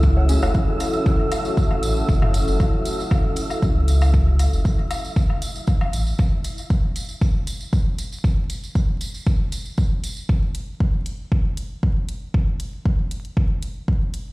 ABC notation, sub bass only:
X:1
M:4/4
L:1/16
Q:"Swing 16ths" 1/4=117
K:F#m
V:1 name="Sub bass" clef=bass
C,,3 F,,, z8 z2 A,,,2 | F,,,3 F,,, z8 C,,4- | C,,3 F,,, z8 z2 A,,,2 | z16 |
z16 | z16 | z16 |]